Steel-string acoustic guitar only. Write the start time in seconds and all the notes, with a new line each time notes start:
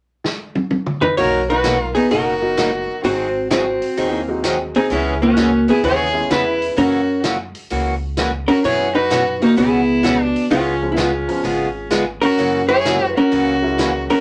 1.17 B2 F#3 A#3 D#4 F#4
1.64 B2 F#3 A#3 D#4 F#4
2.11 B2 F#3 A#3 D#4 F#4
2.57 B2 F#3 A#3 D#4 F#4
3.03 D#3 F#3 C4 D#4 G#4
3.50 D#3 F#3 C4 D#4 G#4
3.97 D#3 F#3 C4 D#4 G#4
4.44 D#3 F#3 C4 D#4 G#4
4.90 C#3 E3 B3 C#4 G#4
5.37 C#3 E3 B3 C#4 G#4
5.84 C#3 E3 B3 C#4 G#4
6.30 C#3 E3 B3 C#4 G#4
6.76 C#3 E3 A#3 C#4 F#4
7.24 C#3 E3 A#3 C#4 F#4
7.71 C#3 E3 A#3 C#4 F#4
8.18 C#3 E3 A#3 C#4 F#4
8.64 B2 E3 B3 C#4 F#4
9.10 B2 E3 B3 C#4 F#4
9.56 B2 E3 B3 C#4 F#4
10.03 B2 E3 B3 C#4 F#4
10.50 C#3 G#3 B3 F4 G#4
10.96 C#3 G#3 B3 F4 G#4
11.44 C#3 G#3 B3 F4 G#4
11.90 C#3 G#3 B3 F4 G#4
12.38 C#3 E3 A#3 C#4 F#4
12.85 C#3 E3 A#3 C#4 F#4
13.31 C#3 E3 A#3 C#4 F#4
13.78 C#3 E3 A#3 C#4 F#4